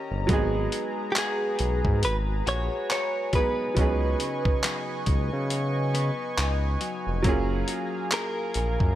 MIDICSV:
0, 0, Header, 1, 7, 480
1, 0, Start_track
1, 0, Tempo, 869565
1, 160, Time_signature, 4, 2, 24, 8
1, 4942, End_track
2, 0, Start_track
2, 0, Title_t, "Analog synth pad"
2, 0, Program_c, 0, 89
2, 0, Note_on_c, 0, 67, 84
2, 0, Note_on_c, 0, 73, 77
2, 0, Note_on_c, 0, 75, 77
2, 0, Note_on_c, 0, 82, 94
2, 141, Note_off_c, 0, 67, 0
2, 141, Note_off_c, 0, 73, 0
2, 141, Note_off_c, 0, 75, 0
2, 160, Note_on_c, 0, 71, 77
2, 161, Note_on_c, 0, 68, 85
2, 161, Note_on_c, 0, 80, 77
2, 2057, Note_off_c, 0, 82, 0
2, 2061, Note_off_c, 0, 68, 0
2, 2080, Note_on_c, 0, 75, 75
2, 2081, Note_on_c, 0, 85, 98
2, 3978, Note_off_c, 0, 71, 0
2, 3981, Note_off_c, 0, 75, 0
2, 3981, Note_off_c, 0, 85, 0
2, 4000, Note_on_c, 0, 82, 93
2, 4001, Note_on_c, 0, 68, 86
2, 4001, Note_on_c, 0, 77, 76
2, 4942, Note_off_c, 0, 68, 0
2, 4942, Note_off_c, 0, 77, 0
2, 4942, Note_off_c, 0, 80, 0
2, 4942, Note_off_c, 0, 82, 0
2, 4942, End_track
3, 0, Start_track
3, 0, Title_t, "Clean electric guitar"
3, 0, Program_c, 1, 27
3, 618, Note_on_c, 1, 67, 67
3, 645, Note_off_c, 1, 67, 0
3, 653, Note_on_c, 1, 68, 94
3, 1130, Note_on_c, 1, 71, 103
3, 1140, Note_off_c, 1, 68, 0
3, 1194, Note_off_c, 1, 71, 0
3, 1372, Note_on_c, 1, 73, 118
3, 1604, Note_off_c, 1, 73, 0
3, 1611, Note_on_c, 1, 73, 110
3, 1849, Note_off_c, 1, 73, 0
3, 1851, Note_on_c, 1, 71, 93
3, 2783, Note_off_c, 1, 71, 0
3, 4492, Note_on_c, 1, 70, 99
3, 4942, Note_off_c, 1, 70, 0
3, 4942, End_track
4, 0, Start_track
4, 0, Title_t, "Grand piano"
4, 0, Program_c, 2, 0
4, 0, Control_c, 2, 64, 127
4, 0, Note_on_c, 2, 55, 71
4, 0, Note_on_c, 2, 58, 61
4, 0, Note_on_c, 2, 61, 63
4, 0, Note_on_c, 2, 63, 63
4, 0, Note_on_c, 2, 70, 75
4, 132, Note_off_c, 2, 55, 0
4, 136, Note_off_c, 2, 58, 0
4, 141, Note_off_c, 2, 61, 0
4, 145, Note_off_c, 2, 63, 0
4, 149, Note_on_c, 2, 54, 80
4, 156, Note_on_c, 2, 56, 73
4, 165, Note_on_c, 2, 59, 74
4, 167, Note_off_c, 2, 70, 0
4, 167, Control_c, 2, 64, 0
4, 174, Note_on_c, 2, 63, 73
4, 182, Note_on_c, 2, 68, 90
4, 281, Control_c, 2, 64, 127
4, 1812, Note_off_c, 2, 54, 0
4, 1816, Note_off_c, 2, 56, 0
4, 1820, Note_off_c, 2, 59, 0
4, 1825, Note_off_c, 2, 63, 0
4, 1829, Note_off_c, 2, 68, 0
4, 1838, Note_on_c, 2, 54, 51
4, 1842, Note_on_c, 2, 56, 44
4, 1847, Note_on_c, 2, 59, 47
4, 1851, Note_on_c, 2, 63, 45
4, 1855, Note_on_c, 2, 68, 57
4, 2060, Note_off_c, 2, 54, 0
4, 2068, Note_off_c, 2, 59, 0
4, 2068, Note_on_c, 2, 54, 68
4, 2077, Note_on_c, 2, 59, 62
4, 2081, Note_off_c, 2, 56, 0
4, 2085, Note_off_c, 2, 63, 0
4, 2085, Note_on_c, 2, 61, 64
4, 2086, Control_c, 2, 64, 0
4, 2087, Note_off_c, 2, 68, 0
4, 2094, Note_on_c, 2, 63, 64
4, 2103, Note_on_c, 2, 68, 77
4, 2194, Control_c, 2, 64, 127
4, 3972, Note_off_c, 2, 54, 0
4, 3976, Note_off_c, 2, 59, 0
4, 3980, Note_off_c, 2, 61, 0
4, 3985, Note_off_c, 2, 63, 0
4, 3988, Note_on_c, 2, 54, 81
4, 3989, Note_off_c, 2, 68, 0
4, 3997, Note_on_c, 2, 58, 77
4, 4005, Note_on_c, 2, 61, 75
4, 4007, Control_c, 2, 64, 0
4, 4014, Note_on_c, 2, 65, 75
4, 4022, Note_on_c, 2, 68, 91
4, 4104, Control_c, 2, 64, 127
4, 4942, Note_off_c, 2, 54, 0
4, 4942, Note_off_c, 2, 58, 0
4, 4942, Note_off_c, 2, 61, 0
4, 4942, Note_off_c, 2, 65, 0
4, 4942, Note_off_c, 2, 68, 0
4, 4942, End_track
5, 0, Start_track
5, 0, Title_t, "Clean electric guitar"
5, 0, Program_c, 3, 27
5, 0, Note_on_c, 3, 51, 79
5, 0, Note_on_c, 3, 61, 60
5, 0, Note_on_c, 3, 67, 67
5, 0, Note_on_c, 3, 70, 69
5, 162, Note_on_c, 3, 56, 84
5, 173, Note_off_c, 3, 51, 0
5, 216, Note_off_c, 3, 61, 0
5, 216, Note_off_c, 3, 67, 0
5, 640, Note_on_c, 3, 59, 62
5, 643, Note_on_c, 3, 66, 63
5, 657, Note_off_c, 3, 70, 0
5, 1358, Note_off_c, 3, 66, 0
5, 1360, Note_on_c, 3, 66, 66
5, 1838, Note_off_c, 3, 59, 0
5, 1840, Note_on_c, 3, 59, 63
5, 2080, Note_on_c, 3, 49, 85
5, 2094, Note_off_c, 3, 56, 0
5, 2560, Note_on_c, 3, 54, 61
5, 2561, Note_off_c, 3, 59, 0
5, 2564, Note_on_c, 3, 59, 61
5, 2565, Note_off_c, 3, 66, 0
5, 2567, Note_on_c, 3, 63, 68
5, 3273, Note_off_c, 3, 59, 0
5, 3280, Note_on_c, 3, 59, 67
5, 3513, Note_off_c, 3, 63, 0
5, 3520, Note_on_c, 3, 63, 77
5, 3758, Note_off_c, 3, 54, 0
5, 3760, Note_on_c, 3, 54, 60
5, 3998, Note_off_c, 3, 54, 0
5, 4000, Note_off_c, 3, 49, 0
5, 4000, Note_on_c, 3, 54, 86
5, 4055, Note_off_c, 3, 59, 0
5, 4055, Note_off_c, 3, 63, 0
5, 4480, Note_on_c, 3, 58, 61
5, 4483, Note_on_c, 3, 65, 62
5, 4486, Note_on_c, 3, 68, 69
5, 4942, Note_off_c, 3, 54, 0
5, 4942, Note_off_c, 3, 58, 0
5, 4942, Note_off_c, 3, 65, 0
5, 4942, Note_off_c, 3, 68, 0
5, 4942, End_track
6, 0, Start_track
6, 0, Title_t, "Analog synth bass"
6, 0, Program_c, 4, 38
6, 62, Note_on_c, 4, 31, 95
6, 150, Note_off_c, 4, 31, 0
6, 161, Note_on_c, 4, 32, 110
6, 375, Note_off_c, 4, 32, 0
6, 882, Note_on_c, 4, 35, 88
6, 1006, Note_off_c, 4, 35, 0
6, 1021, Note_on_c, 4, 44, 113
6, 1122, Note_on_c, 4, 32, 105
6, 1130, Note_off_c, 4, 44, 0
6, 1336, Note_off_c, 4, 32, 0
6, 1362, Note_on_c, 4, 34, 97
6, 1485, Note_off_c, 4, 34, 0
6, 2080, Note_on_c, 4, 37, 112
6, 2294, Note_off_c, 4, 37, 0
6, 2800, Note_on_c, 4, 37, 79
6, 2924, Note_off_c, 4, 37, 0
6, 2941, Note_on_c, 4, 49, 99
6, 3370, Note_off_c, 4, 49, 0
6, 3521, Note_on_c, 4, 37, 102
6, 3735, Note_off_c, 4, 37, 0
6, 3902, Note_on_c, 4, 29, 99
6, 3990, Note_off_c, 4, 29, 0
6, 4001, Note_on_c, 4, 30, 111
6, 4215, Note_off_c, 4, 30, 0
6, 4722, Note_on_c, 4, 34, 97
6, 4846, Note_off_c, 4, 34, 0
6, 4860, Note_on_c, 4, 42, 106
6, 4942, Note_off_c, 4, 42, 0
6, 4942, End_track
7, 0, Start_track
7, 0, Title_t, "Drums"
7, 160, Note_on_c, 9, 36, 112
7, 160, Note_on_c, 9, 42, 66
7, 215, Note_off_c, 9, 42, 0
7, 216, Note_off_c, 9, 36, 0
7, 399, Note_on_c, 9, 42, 78
7, 454, Note_off_c, 9, 42, 0
7, 638, Note_on_c, 9, 42, 69
7, 639, Note_on_c, 9, 39, 115
7, 694, Note_off_c, 9, 39, 0
7, 694, Note_off_c, 9, 42, 0
7, 876, Note_on_c, 9, 42, 71
7, 931, Note_off_c, 9, 42, 0
7, 1019, Note_on_c, 9, 36, 110
7, 1075, Note_off_c, 9, 36, 0
7, 1119, Note_on_c, 9, 42, 81
7, 1174, Note_off_c, 9, 42, 0
7, 1364, Note_on_c, 9, 42, 75
7, 1419, Note_off_c, 9, 42, 0
7, 1601, Note_on_c, 9, 42, 63
7, 1602, Note_on_c, 9, 39, 118
7, 1656, Note_off_c, 9, 42, 0
7, 1657, Note_off_c, 9, 39, 0
7, 1837, Note_on_c, 9, 42, 68
7, 1840, Note_on_c, 9, 36, 97
7, 1893, Note_off_c, 9, 42, 0
7, 1895, Note_off_c, 9, 36, 0
7, 2079, Note_on_c, 9, 36, 108
7, 2079, Note_on_c, 9, 42, 65
7, 2134, Note_off_c, 9, 42, 0
7, 2135, Note_off_c, 9, 36, 0
7, 2318, Note_on_c, 9, 42, 79
7, 2373, Note_off_c, 9, 42, 0
7, 2458, Note_on_c, 9, 36, 107
7, 2514, Note_off_c, 9, 36, 0
7, 2558, Note_on_c, 9, 39, 118
7, 2558, Note_on_c, 9, 42, 69
7, 2613, Note_off_c, 9, 39, 0
7, 2613, Note_off_c, 9, 42, 0
7, 2795, Note_on_c, 9, 42, 70
7, 2799, Note_on_c, 9, 36, 94
7, 2850, Note_off_c, 9, 42, 0
7, 2854, Note_off_c, 9, 36, 0
7, 3038, Note_on_c, 9, 42, 78
7, 3094, Note_off_c, 9, 42, 0
7, 3283, Note_on_c, 9, 42, 74
7, 3338, Note_off_c, 9, 42, 0
7, 3521, Note_on_c, 9, 42, 59
7, 3522, Note_on_c, 9, 39, 124
7, 3576, Note_off_c, 9, 42, 0
7, 3577, Note_off_c, 9, 39, 0
7, 3758, Note_on_c, 9, 42, 67
7, 3813, Note_off_c, 9, 42, 0
7, 3998, Note_on_c, 9, 42, 68
7, 3999, Note_on_c, 9, 36, 111
7, 4053, Note_off_c, 9, 42, 0
7, 4055, Note_off_c, 9, 36, 0
7, 4238, Note_on_c, 9, 42, 79
7, 4293, Note_off_c, 9, 42, 0
7, 4478, Note_on_c, 9, 42, 65
7, 4479, Note_on_c, 9, 39, 116
7, 4533, Note_off_c, 9, 42, 0
7, 4534, Note_off_c, 9, 39, 0
7, 4716, Note_on_c, 9, 42, 72
7, 4771, Note_off_c, 9, 42, 0
7, 4859, Note_on_c, 9, 36, 105
7, 4914, Note_off_c, 9, 36, 0
7, 4942, End_track
0, 0, End_of_file